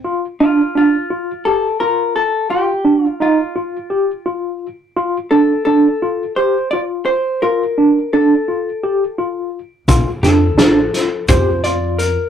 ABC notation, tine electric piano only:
X:1
M:7/8
L:1/8
Q:1/4=85
K:Dphr
V:1 name="Tine electric piano"
F D D F G F2 | F D E F G F2 | F D D F G F2 | F D D F G F2 |
F D D F G F2 |]